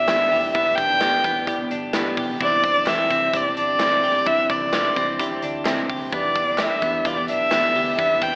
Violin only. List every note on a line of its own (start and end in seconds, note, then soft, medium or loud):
0.00 0.50 E5 loud
0.53 0.77 E5 loud
0.75 1.70 G5 loud
2.44 2.90 D5 loud
2.88 3.38 E5 loud
3.36 3.56 D5 medium
3.57 4.28 D5 loud
4.27 4.50 E5 loud
4.50 5.39 D5 medium
6.16 6.64 D5 medium
6.63 7.08 E5 medium
7.07 7.30 D5 medium
7.30 7.95 E5 loud
7.99 8.24 E5 loud
8.23 8.35 G5 loud